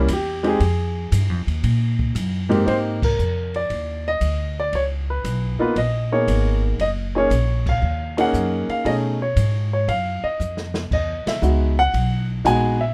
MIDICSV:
0, 0, Header, 1, 5, 480
1, 0, Start_track
1, 0, Tempo, 515464
1, 562, Time_signature, 4, 2, 24, 8
1, 12049, End_track
2, 0, Start_track
2, 0, Title_t, "Grand piano"
2, 0, Program_c, 0, 0
2, 0, Note_on_c, 0, 64, 64
2, 94, Note_off_c, 0, 64, 0
2, 120, Note_on_c, 0, 67, 83
2, 400, Note_off_c, 0, 67, 0
2, 402, Note_on_c, 0, 56, 71
2, 407, Note_on_c, 0, 60, 67
2, 414, Note_on_c, 0, 63, 63
2, 414, Note_on_c, 0, 67, 90
2, 440, Note_on_c, 0, 68, 88
2, 541, Note_off_c, 0, 56, 0
2, 544, Note_off_c, 0, 60, 0
2, 547, Note_off_c, 0, 63, 0
2, 547, Note_off_c, 0, 67, 0
2, 1019, Note_off_c, 0, 68, 0
2, 2320, Note_on_c, 0, 58, 70
2, 2323, Note_on_c, 0, 44, 77
2, 2326, Note_on_c, 0, 60, 62
2, 2326, Note_on_c, 0, 63, 70
2, 2328, Note_on_c, 0, 67, 83
2, 2457, Note_off_c, 0, 58, 0
2, 2463, Note_off_c, 0, 44, 0
2, 2464, Note_off_c, 0, 60, 0
2, 2464, Note_off_c, 0, 63, 0
2, 2465, Note_off_c, 0, 67, 0
2, 2471, Note_on_c, 0, 58, 57
2, 2478, Note_on_c, 0, 60, 59
2, 2481, Note_on_c, 0, 63, 57
2, 2486, Note_on_c, 0, 67, 64
2, 2495, Note_on_c, 0, 72, 85
2, 2568, Note_off_c, 0, 72, 0
2, 2776, Note_off_c, 0, 58, 0
2, 2779, Note_off_c, 0, 60, 0
2, 2781, Note_off_c, 0, 63, 0
2, 2783, Note_off_c, 0, 67, 0
2, 2833, Note_on_c, 0, 70, 69
2, 3314, Note_on_c, 0, 74, 90
2, 3318, Note_off_c, 0, 70, 0
2, 3797, Note_on_c, 0, 75, 100
2, 3799, Note_off_c, 0, 74, 0
2, 4279, Note_on_c, 0, 74, 90
2, 4280, Note_off_c, 0, 75, 0
2, 4420, Note_off_c, 0, 74, 0
2, 4426, Note_on_c, 0, 73, 88
2, 4498, Note_off_c, 0, 73, 0
2, 4750, Note_on_c, 0, 71, 76
2, 5206, Note_on_c, 0, 58, 64
2, 5209, Note_on_c, 0, 59, 63
2, 5212, Note_on_c, 0, 63, 59
2, 5213, Note_off_c, 0, 71, 0
2, 5219, Note_on_c, 0, 65, 77
2, 5227, Note_on_c, 0, 71, 74
2, 5344, Note_off_c, 0, 58, 0
2, 5346, Note_off_c, 0, 59, 0
2, 5347, Note_off_c, 0, 63, 0
2, 5351, Note_off_c, 0, 65, 0
2, 5374, Note_off_c, 0, 71, 0
2, 5380, Note_on_c, 0, 75, 86
2, 5700, Note_on_c, 0, 58, 61
2, 5704, Note_on_c, 0, 63, 51
2, 5704, Note_on_c, 0, 73, 81
2, 5706, Note_on_c, 0, 59, 48
2, 5710, Note_on_c, 0, 68, 61
2, 5712, Note_off_c, 0, 75, 0
2, 6146, Note_off_c, 0, 73, 0
2, 6296, Note_off_c, 0, 58, 0
2, 6298, Note_off_c, 0, 63, 0
2, 6299, Note_off_c, 0, 59, 0
2, 6301, Note_off_c, 0, 68, 0
2, 6341, Note_on_c, 0, 75, 94
2, 6414, Note_off_c, 0, 75, 0
2, 6660, Note_on_c, 0, 61, 61
2, 6662, Note_on_c, 0, 58, 64
2, 6668, Note_on_c, 0, 63, 52
2, 6670, Note_on_c, 0, 68, 72
2, 6685, Note_on_c, 0, 73, 80
2, 6791, Note_off_c, 0, 61, 0
2, 6792, Note_off_c, 0, 58, 0
2, 6795, Note_off_c, 0, 63, 0
2, 6796, Note_off_c, 0, 68, 0
2, 7160, Note_on_c, 0, 77, 85
2, 7163, Note_off_c, 0, 73, 0
2, 7610, Note_on_c, 0, 61, 59
2, 7615, Note_on_c, 0, 58, 68
2, 7618, Note_on_c, 0, 63, 63
2, 7622, Note_on_c, 0, 68, 73
2, 7640, Note_off_c, 0, 77, 0
2, 7641, Note_on_c, 0, 78, 90
2, 8074, Note_off_c, 0, 78, 0
2, 8101, Note_on_c, 0, 77, 84
2, 8210, Note_off_c, 0, 61, 0
2, 8213, Note_off_c, 0, 58, 0
2, 8214, Note_off_c, 0, 63, 0
2, 8216, Note_off_c, 0, 68, 0
2, 8236, Note_on_c, 0, 57, 58
2, 8243, Note_on_c, 0, 61, 51
2, 8246, Note_on_c, 0, 63, 54
2, 8250, Note_off_c, 0, 77, 0
2, 8250, Note_on_c, 0, 68, 62
2, 8255, Note_on_c, 0, 75, 88
2, 8328, Note_off_c, 0, 75, 0
2, 8537, Note_off_c, 0, 57, 0
2, 8540, Note_off_c, 0, 61, 0
2, 8542, Note_off_c, 0, 63, 0
2, 8544, Note_off_c, 0, 68, 0
2, 8587, Note_on_c, 0, 73, 75
2, 9050, Note_off_c, 0, 73, 0
2, 9064, Note_on_c, 0, 73, 73
2, 9205, Note_on_c, 0, 77, 88
2, 9211, Note_off_c, 0, 73, 0
2, 9533, Note_on_c, 0, 75, 86
2, 9544, Note_off_c, 0, 77, 0
2, 9979, Note_off_c, 0, 75, 0
2, 10181, Note_on_c, 0, 75, 85
2, 10506, Note_on_c, 0, 76, 80
2, 10512, Note_off_c, 0, 75, 0
2, 10632, Note_on_c, 0, 56, 55
2, 10636, Note_on_c, 0, 59, 51
2, 10642, Note_on_c, 0, 63, 50
2, 10642, Note_on_c, 0, 66, 64
2, 10934, Note_off_c, 0, 56, 0
2, 10936, Note_off_c, 0, 59, 0
2, 10939, Note_off_c, 0, 63, 0
2, 10939, Note_off_c, 0, 66, 0
2, 10978, Note_on_c, 0, 78, 105
2, 10993, Note_off_c, 0, 76, 0
2, 11422, Note_off_c, 0, 78, 0
2, 11588, Note_on_c, 0, 56, 62
2, 11592, Note_on_c, 0, 59, 63
2, 11592, Note_on_c, 0, 63, 62
2, 11595, Note_on_c, 0, 66, 72
2, 11607, Note_on_c, 0, 80, 91
2, 11893, Note_off_c, 0, 56, 0
2, 11894, Note_off_c, 0, 59, 0
2, 11894, Note_off_c, 0, 63, 0
2, 11896, Note_off_c, 0, 66, 0
2, 11926, Note_on_c, 0, 76, 81
2, 11945, Note_off_c, 0, 80, 0
2, 12049, Note_off_c, 0, 76, 0
2, 12049, End_track
3, 0, Start_track
3, 0, Title_t, "Upright bass"
3, 0, Program_c, 1, 32
3, 78, Note_on_c, 1, 40, 84
3, 546, Note_off_c, 1, 40, 0
3, 561, Note_on_c, 1, 41, 88
3, 1027, Note_off_c, 1, 41, 0
3, 1041, Note_on_c, 1, 43, 85
3, 1206, Note_off_c, 1, 43, 0
3, 1206, Note_on_c, 1, 41, 58
3, 1362, Note_off_c, 1, 41, 0
3, 1367, Note_on_c, 1, 39, 67
3, 1514, Note_off_c, 1, 39, 0
3, 1523, Note_on_c, 1, 46, 92
3, 1989, Note_off_c, 1, 46, 0
3, 2002, Note_on_c, 1, 42, 93
3, 2468, Note_off_c, 1, 42, 0
3, 2486, Note_on_c, 1, 44, 64
3, 2951, Note_off_c, 1, 44, 0
3, 2971, Note_on_c, 1, 41, 81
3, 3433, Note_off_c, 1, 41, 0
3, 3446, Note_on_c, 1, 39, 78
3, 3911, Note_off_c, 1, 39, 0
3, 3919, Note_on_c, 1, 38, 78
3, 4387, Note_off_c, 1, 38, 0
3, 4402, Note_on_c, 1, 37, 75
3, 4869, Note_off_c, 1, 37, 0
3, 4883, Note_on_c, 1, 35, 85
3, 5191, Note_off_c, 1, 35, 0
3, 5363, Note_on_c, 1, 34, 83
3, 5829, Note_off_c, 1, 34, 0
3, 5844, Note_on_c, 1, 32, 82
3, 6309, Note_off_c, 1, 32, 0
3, 6320, Note_on_c, 1, 30, 72
3, 6787, Note_off_c, 1, 30, 0
3, 6800, Note_on_c, 1, 34, 84
3, 7267, Note_off_c, 1, 34, 0
3, 7282, Note_on_c, 1, 39, 86
3, 7747, Note_off_c, 1, 39, 0
3, 7761, Note_on_c, 1, 42, 76
3, 8069, Note_off_c, 1, 42, 0
3, 8242, Note_on_c, 1, 47, 78
3, 8707, Note_off_c, 1, 47, 0
3, 8720, Note_on_c, 1, 44, 90
3, 9186, Note_off_c, 1, 44, 0
3, 9199, Note_on_c, 1, 42, 82
3, 9508, Note_off_c, 1, 42, 0
3, 9682, Note_on_c, 1, 41, 82
3, 10147, Note_off_c, 1, 41, 0
3, 10163, Note_on_c, 1, 40, 68
3, 10470, Note_off_c, 1, 40, 0
3, 10632, Note_on_c, 1, 37, 81
3, 11102, Note_off_c, 1, 37, 0
3, 11115, Note_on_c, 1, 35, 82
3, 11583, Note_off_c, 1, 35, 0
3, 11594, Note_on_c, 1, 34, 81
3, 12049, Note_off_c, 1, 34, 0
3, 12049, End_track
4, 0, Start_track
4, 0, Title_t, "Muted upright bass strokes"
4, 5215, Note_on_c, 9, 29, 34
4, 5308, Note_off_c, 9, 29, 0
4, 8086, Note_on_c, 9, 29, 38
4, 8179, Note_off_c, 9, 29, 0
4, 9531, Note_on_c, 9, 29, 36
4, 9625, Note_off_c, 9, 29, 0
4, 10488, Note_on_c, 9, 29, 40
4, 10581, Note_off_c, 9, 29, 0
4, 12049, End_track
5, 0, Start_track
5, 0, Title_t, "Drums"
5, 78, Note_on_c, 9, 44, 67
5, 78, Note_on_c, 9, 51, 75
5, 81, Note_on_c, 9, 36, 24
5, 172, Note_off_c, 9, 44, 0
5, 172, Note_off_c, 9, 51, 0
5, 174, Note_off_c, 9, 36, 0
5, 412, Note_on_c, 9, 51, 41
5, 505, Note_off_c, 9, 51, 0
5, 562, Note_on_c, 9, 36, 25
5, 562, Note_on_c, 9, 51, 60
5, 655, Note_off_c, 9, 51, 0
5, 656, Note_off_c, 9, 36, 0
5, 1043, Note_on_c, 9, 36, 22
5, 1044, Note_on_c, 9, 44, 68
5, 1044, Note_on_c, 9, 51, 75
5, 1136, Note_off_c, 9, 36, 0
5, 1137, Note_off_c, 9, 44, 0
5, 1137, Note_off_c, 9, 51, 0
5, 1378, Note_on_c, 9, 51, 41
5, 1471, Note_off_c, 9, 51, 0
5, 1523, Note_on_c, 9, 36, 28
5, 1524, Note_on_c, 9, 51, 62
5, 1617, Note_off_c, 9, 36, 0
5, 1617, Note_off_c, 9, 51, 0
5, 1855, Note_on_c, 9, 36, 63
5, 1948, Note_off_c, 9, 36, 0
5, 2005, Note_on_c, 9, 36, 20
5, 2008, Note_on_c, 9, 44, 54
5, 2008, Note_on_c, 9, 51, 66
5, 2098, Note_off_c, 9, 36, 0
5, 2102, Note_off_c, 9, 44, 0
5, 2102, Note_off_c, 9, 51, 0
5, 2341, Note_on_c, 9, 51, 46
5, 2434, Note_off_c, 9, 51, 0
5, 2485, Note_on_c, 9, 36, 18
5, 2492, Note_on_c, 9, 51, 53
5, 2579, Note_off_c, 9, 36, 0
5, 2585, Note_off_c, 9, 51, 0
5, 2817, Note_on_c, 9, 36, 87
5, 2822, Note_on_c, 9, 49, 74
5, 2910, Note_off_c, 9, 36, 0
5, 2915, Note_off_c, 9, 49, 0
5, 2971, Note_on_c, 9, 44, 46
5, 3064, Note_off_c, 9, 44, 0
5, 3300, Note_on_c, 9, 51, 36
5, 3393, Note_off_c, 9, 51, 0
5, 3445, Note_on_c, 9, 36, 19
5, 3446, Note_on_c, 9, 51, 50
5, 3538, Note_off_c, 9, 36, 0
5, 3539, Note_off_c, 9, 51, 0
5, 3920, Note_on_c, 9, 44, 51
5, 3920, Note_on_c, 9, 51, 61
5, 3922, Note_on_c, 9, 36, 18
5, 4013, Note_off_c, 9, 44, 0
5, 4013, Note_off_c, 9, 51, 0
5, 4016, Note_off_c, 9, 36, 0
5, 4402, Note_on_c, 9, 36, 19
5, 4403, Note_on_c, 9, 51, 52
5, 4495, Note_off_c, 9, 36, 0
5, 4496, Note_off_c, 9, 51, 0
5, 4883, Note_on_c, 9, 36, 23
5, 4885, Note_on_c, 9, 44, 63
5, 4885, Note_on_c, 9, 51, 62
5, 4976, Note_off_c, 9, 36, 0
5, 4978, Note_off_c, 9, 44, 0
5, 4978, Note_off_c, 9, 51, 0
5, 5363, Note_on_c, 9, 36, 18
5, 5365, Note_on_c, 9, 51, 55
5, 5456, Note_off_c, 9, 36, 0
5, 5459, Note_off_c, 9, 51, 0
5, 5844, Note_on_c, 9, 36, 20
5, 5848, Note_on_c, 9, 44, 52
5, 5848, Note_on_c, 9, 51, 65
5, 5937, Note_off_c, 9, 36, 0
5, 5942, Note_off_c, 9, 44, 0
5, 5942, Note_off_c, 9, 51, 0
5, 6322, Note_on_c, 9, 36, 22
5, 6328, Note_on_c, 9, 51, 51
5, 6416, Note_off_c, 9, 36, 0
5, 6421, Note_off_c, 9, 51, 0
5, 6803, Note_on_c, 9, 36, 23
5, 6808, Note_on_c, 9, 44, 49
5, 6808, Note_on_c, 9, 51, 61
5, 6896, Note_off_c, 9, 36, 0
5, 6901, Note_off_c, 9, 44, 0
5, 6901, Note_off_c, 9, 51, 0
5, 7135, Note_on_c, 9, 36, 72
5, 7137, Note_on_c, 9, 49, 65
5, 7228, Note_off_c, 9, 36, 0
5, 7230, Note_off_c, 9, 49, 0
5, 7617, Note_on_c, 9, 51, 64
5, 7710, Note_off_c, 9, 51, 0
5, 7763, Note_on_c, 9, 36, 23
5, 7766, Note_on_c, 9, 44, 48
5, 7856, Note_off_c, 9, 36, 0
5, 7859, Note_off_c, 9, 44, 0
5, 8096, Note_on_c, 9, 51, 38
5, 8189, Note_off_c, 9, 51, 0
5, 8242, Note_on_c, 9, 36, 21
5, 8248, Note_on_c, 9, 51, 54
5, 8336, Note_off_c, 9, 36, 0
5, 8342, Note_off_c, 9, 51, 0
5, 8722, Note_on_c, 9, 36, 19
5, 8722, Note_on_c, 9, 44, 48
5, 8722, Note_on_c, 9, 51, 60
5, 8815, Note_off_c, 9, 36, 0
5, 8815, Note_off_c, 9, 44, 0
5, 8815, Note_off_c, 9, 51, 0
5, 9203, Note_on_c, 9, 36, 20
5, 9205, Note_on_c, 9, 51, 53
5, 9296, Note_off_c, 9, 36, 0
5, 9298, Note_off_c, 9, 51, 0
5, 9687, Note_on_c, 9, 44, 53
5, 9780, Note_off_c, 9, 44, 0
5, 9844, Note_on_c, 9, 38, 53
5, 9937, Note_off_c, 9, 38, 0
5, 10002, Note_on_c, 9, 38, 70
5, 10095, Note_off_c, 9, 38, 0
5, 10162, Note_on_c, 9, 36, 61
5, 10167, Note_on_c, 9, 49, 60
5, 10255, Note_off_c, 9, 36, 0
5, 10260, Note_off_c, 9, 49, 0
5, 10495, Note_on_c, 9, 38, 79
5, 10495, Note_on_c, 9, 51, 62
5, 10588, Note_off_c, 9, 38, 0
5, 10588, Note_off_c, 9, 51, 0
5, 10639, Note_on_c, 9, 44, 51
5, 10733, Note_off_c, 9, 44, 0
5, 11117, Note_on_c, 9, 36, 18
5, 11120, Note_on_c, 9, 51, 61
5, 11210, Note_off_c, 9, 36, 0
5, 11213, Note_off_c, 9, 51, 0
5, 11597, Note_on_c, 9, 36, 23
5, 11598, Note_on_c, 9, 44, 56
5, 11598, Note_on_c, 9, 51, 66
5, 11690, Note_off_c, 9, 36, 0
5, 11691, Note_off_c, 9, 44, 0
5, 11691, Note_off_c, 9, 51, 0
5, 12049, End_track
0, 0, End_of_file